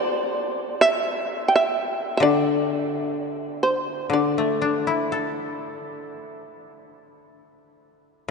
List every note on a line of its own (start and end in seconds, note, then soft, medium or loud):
0.00 0.78 D5 medium
0.81 1.42 E5 medium
1.48 1.55 G5 medium
1.56 2.10 E5 medium
2.17 4.08 D3 medium
2.17 2.22 E5 medium
2.23 3.58 D5 medium
3.63 4.07 C5 medium
4.10 7.05 D3 soft
4.10 5.93 D5 medium
4.38 6.34 A3 soft
4.62 6.58 D4 soft
4.87 6.82 E4 soft
5.12 7.06 A4 soft